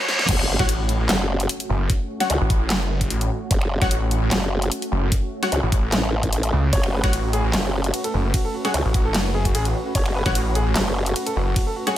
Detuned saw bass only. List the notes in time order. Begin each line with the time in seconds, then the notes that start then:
0.59 A1
1.00 A1
1.69 F#1
2.41 A1
2.70 F#1
3.10 A1
3.82 A1
4.22 A1
4.92 F#1
5.63 A1
6.53 C#2
7.04 A1
7.44 A1
8.14 F#1
8.85 A1
9.15 F#1
9.55 A1
10.26 A1
10.66 A1
11.36 F#1